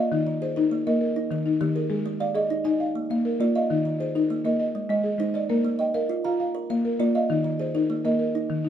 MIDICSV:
0, 0, Header, 1, 3, 480
1, 0, Start_track
1, 0, Tempo, 299551
1, 175, Time_signature, 12, 3, 24, 8
1, 13925, End_track
2, 0, Start_track
2, 0, Title_t, "Kalimba"
2, 0, Program_c, 0, 108
2, 0, Note_on_c, 0, 65, 77
2, 0, Note_on_c, 0, 74, 67
2, 0, Note_on_c, 0, 75, 67
2, 175, Note_off_c, 0, 65, 0
2, 417, Note_off_c, 0, 74, 0
2, 425, Note_on_c, 0, 51, 78
2, 661, Note_off_c, 0, 75, 0
2, 670, Note_on_c, 0, 68, 68
2, 899, Note_off_c, 0, 51, 0
2, 901, Note_on_c, 0, 70, 66
2, 1143, Note_on_c, 0, 58, 79
2, 1381, Note_off_c, 0, 68, 0
2, 1392, Note_on_c, 0, 75, 65
2, 1616, Note_off_c, 0, 70, 0
2, 1617, Note_off_c, 0, 58, 0
2, 1862, Note_on_c, 0, 63, 78
2, 2102, Note_off_c, 0, 75, 0
2, 2108, Note_on_c, 0, 70, 70
2, 2337, Note_off_c, 0, 63, 0
2, 2576, Note_on_c, 0, 58, 85
2, 2577, Note_on_c, 0, 67, 72
2, 2816, Note_on_c, 0, 68, 72
2, 2820, Note_off_c, 0, 70, 0
2, 3054, Note_off_c, 0, 58, 0
2, 3294, Note_off_c, 0, 67, 0
2, 3295, Note_on_c, 0, 56, 85
2, 3532, Note_on_c, 0, 74, 73
2, 3534, Note_off_c, 0, 68, 0
2, 3771, Note_on_c, 0, 75, 69
2, 3773, Note_off_c, 0, 56, 0
2, 4011, Note_on_c, 0, 63, 79
2, 4246, Note_on_c, 0, 80, 65
2, 4252, Note_off_c, 0, 74, 0
2, 4491, Note_off_c, 0, 63, 0
2, 4491, Note_off_c, 0, 75, 0
2, 4733, Note_on_c, 0, 58, 75
2, 4969, Note_off_c, 0, 80, 0
2, 4979, Note_on_c, 0, 77, 68
2, 5212, Note_off_c, 0, 58, 0
2, 5456, Note_on_c, 0, 65, 81
2, 5457, Note_on_c, 0, 74, 69
2, 5695, Note_off_c, 0, 77, 0
2, 5696, Note_on_c, 0, 75, 67
2, 5934, Note_off_c, 0, 65, 0
2, 6174, Note_on_c, 0, 51, 76
2, 6175, Note_off_c, 0, 74, 0
2, 6414, Note_off_c, 0, 75, 0
2, 6418, Note_on_c, 0, 68, 66
2, 6653, Note_off_c, 0, 51, 0
2, 6662, Note_on_c, 0, 70, 64
2, 6895, Note_on_c, 0, 58, 81
2, 7133, Note_on_c, 0, 75, 65
2, 7135, Note_off_c, 0, 68, 0
2, 7374, Note_off_c, 0, 58, 0
2, 7378, Note_off_c, 0, 70, 0
2, 7611, Note_on_c, 0, 56, 74
2, 7833, Note_off_c, 0, 75, 0
2, 7853, Note_on_c, 0, 75, 68
2, 8092, Note_off_c, 0, 56, 0
2, 8328, Note_on_c, 0, 72, 65
2, 8330, Note_on_c, 0, 63, 76
2, 8573, Note_off_c, 0, 75, 0
2, 8577, Note_on_c, 0, 74, 59
2, 8812, Note_off_c, 0, 63, 0
2, 9045, Note_on_c, 0, 58, 87
2, 9051, Note_off_c, 0, 72, 0
2, 9276, Note_on_c, 0, 75, 70
2, 9296, Note_off_c, 0, 74, 0
2, 9523, Note_on_c, 0, 77, 68
2, 9530, Note_off_c, 0, 58, 0
2, 9765, Note_on_c, 0, 65, 77
2, 10006, Note_off_c, 0, 75, 0
2, 10007, Note_on_c, 0, 82, 67
2, 10249, Note_off_c, 0, 77, 0
2, 10250, Note_off_c, 0, 65, 0
2, 10489, Note_on_c, 0, 70, 76
2, 10731, Note_off_c, 0, 82, 0
2, 10739, Note_on_c, 0, 77, 71
2, 10973, Note_off_c, 0, 70, 0
2, 11213, Note_on_c, 0, 74, 69
2, 11215, Note_on_c, 0, 65, 76
2, 11457, Note_off_c, 0, 77, 0
2, 11457, Note_on_c, 0, 75, 68
2, 11696, Note_off_c, 0, 65, 0
2, 11927, Note_on_c, 0, 51, 89
2, 11935, Note_off_c, 0, 74, 0
2, 12170, Note_on_c, 0, 68, 68
2, 12177, Note_off_c, 0, 75, 0
2, 12412, Note_off_c, 0, 51, 0
2, 12414, Note_on_c, 0, 70, 69
2, 12655, Note_on_c, 0, 58, 79
2, 12893, Note_off_c, 0, 68, 0
2, 12902, Note_on_c, 0, 75, 67
2, 13136, Note_off_c, 0, 58, 0
2, 13136, Note_off_c, 0, 70, 0
2, 13382, Note_on_c, 0, 63, 80
2, 13620, Note_off_c, 0, 75, 0
2, 13860, Note_off_c, 0, 63, 0
2, 13925, End_track
3, 0, Start_track
3, 0, Title_t, "Marimba"
3, 0, Program_c, 1, 12
3, 0, Note_on_c, 1, 58, 86
3, 0, Note_on_c, 1, 70, 68
3, 0, Note_on_c, 1, 77, 67
3, 177, Note_off_c, 1, 70, 0
3, 180, Note_off_c, 1, 58, 0
3, 187, Note_on_c, 1, 51, 80
3, 191, Note_on_c, 1, 63, 70
3, 422, Note_off_c, 1, 77, 0
3, 660, Note_off_c, 1, 51, 0
3, 671, Note_on_c, 1, 72, 64
3, 895, Note_off_c, 1, 63, 0
3, 914, Note_on_c, 1, 63, 91
3, 1381, Note_off_c, 1, 72, 0
3, 1383, Note_off_c, 1, 63, 0
3, 1391, Note_on_c, 1, 70, 64
3, 1395, Note_on_c, 1, 58, 78
3, 1599, Note_off_c, 1, 70, 0
3, 1618, Note_on_c, 1, 70, 64
3, 1863, Note_off_c, 1, 58, 0
3, 2094, Note_on_c, 1, 51, 75
3, 2335, Note_off_c, 1, 70, 0
3, 2335, Note_on_c, 1, 63, 73
3, 2556, Note_off_c, 1, 51, 0
3, 2575, Note_on_c, 1, 51, 83
3, 2811, Note_on_c, 1, 70, 64
3, 3041, Note_on_c, 1, 56, 85
3, 3048, Note_on_c, 1, 68, 70
3, 3053, Note_off_c, 1, 51, 0
3, 3053, Note_off_c, 1, 63, 0
3, 3291, Note_off_c, 1, 70, 0
3, 3526, Note_off_c, 1, 56, 0
3, 3528, Note_on_c, 1, 77, 68
3, 3740, Note_off_c, 1, 68, 0
3, 3759, Note_on_c, 1, 68, 81
3, 4238, Note_on_c, 1, 63, 75
3, 4238, Note_on_c, 1, 75, 62
3, 4245, Note_off_c, 1, 68, 0
3, 4250, Note_off_c, 1, 77, 0
3, 4485, Note_off_c, 1, 63, 0
3, 4486, Note_on_c, 1, 77, 69
3, 4725, Note_off_c, 1, 75, 0
3, 4972, Note_on_c, 1, 58, 78
3, 5209, Note_off_c, 1, 77, 0
3, 5211, Note_on_c, 1, 70, 73
3, 5428, Note_off_c, 1, 58, 0
3, 5447, Note_on_c, 1, 58, 81
3, 5699, Note_on_c, 1, 77, 66
3, 5930, Note_off_c, 1, 58, 0
3, 5932, Note_off_c, 1, 70, 0
3, 5934, Note_on_c, 1, 51, 81
3, 5935, Note_on_c, 1, 63, 70
3, 6176, Note_off_c, 1, 77, 0
3, 6408, Note_on_c, 1, 72, 64
3, 6413, Note_off_c, 1, 51, 0
3, 6633, Note_off_c, 1, 63, 0
3, 6653, Note_on_c, 1, 63, 83
3, 7122, Note_on_c, 1, 58, 79
3, 7127, Note_on_c, 1, 70, 60
3, 7131, Note_off_c, 1, 72, 0
3, 7133, Note_off_c, 1, 63, 0
3, 7363, Note_on_c, 1, 75, 65
3, 7368, Note_off_c, 1, 58, 0
3, 7610, Note_off_c, 1, 70, 0
3, 7841, Note_on_c, 1, 56, 80
3, 8070, Note_on_c, 1, 68, 67
3, 8088, Note_off_c, 1, 75, 0
3, 8288, Note_off_c, 1, 56, 0
3, 8307, Note_on_c, 1, 56, 77
3, 8557, Note_on_c, 1, 75, 62
3, 8801, Note_off_c, 1, 56, 0
3, 8802, Note_off_c, 1, 68, 0
3, 8805, Note_on_c, 1, 70, 71
3, 8810, Note_on_c, 1, 58, 81
3, 9046, Note_off_c, 1, 75, 0
3, 9292, Note_off_c, 1, 58, 0
3, 9302, Note_on_c, 1, 79, 60
3, 9506, Note_off_c, 1, 70, 0
3, 9525, Note_on_c, 1, 70, 83
3, 10010, Note_off_c, 1, 70, 0
3, 10017, Note_on_c, 1, 65, 75
3, 10017, Note_on_c, 1, 77, 61
3, 10019, Note_off_c, 1, 79, 0
3, 10234, Note_off_c, 1, 77, 0
3, 10253, Note_on_c, 1, 77, 66
3, 10496, Note_off_c, 1, 65, 0
3, 10736, Note_on_c, 1, 58, 82
3, 10974, Note_on_c, 1, 70, 72
3, 10975, Note_off_c, 1, 77, 0
3, 11188, Note_off_c, 1, 58, 0
3, 11207, Note_on_c, 1, 58, 85
3, 11463, Note_on_c, 1, 77, 65
3, 11692, Note_off_c, 1, 58, 0
3, 11693, Note_on_c, 1, 63, 67
3, 11695, Note_off_c, 1, 70, 0
3, 11695, Note_on_c, 1, 51, 83
3, 11940, Note_off_c, 1, 77, 0
3, 12176, Note_off_c, 1, 51, 0
3, 12178, Note_on_c, 1, 72, 61
3, 12392, Note_off_c, 1, 63, 0
3, 12411, Note_on_c, 1, 63, 84
3, 12893, Note_on_c, 1, 58, 78
3, 12893, Note_on_c, 1, 70, 65
3, 12894, Note_off_c, 1, 63, 0
3, 12898, Note_off_c, 1, 72, 0
3, 13104, Note_off_c, 1, 70, 0
3, 13123, Note_on_c, 1, 70, 61
3, 13375, Note_off_c, 1, 58, 0
3, 13617, Note_on_c, 1, 51, 78
3, 13850, Note_off_c, 1, 70, 0
3, 13853, Note_on_c, 1, 63, 69
3, 13925, Note_off_c, 1, 51, 0
3, 13925, Note_off_c, 1, 63, 0
3, 13925, End_track
0, 0, End_of_file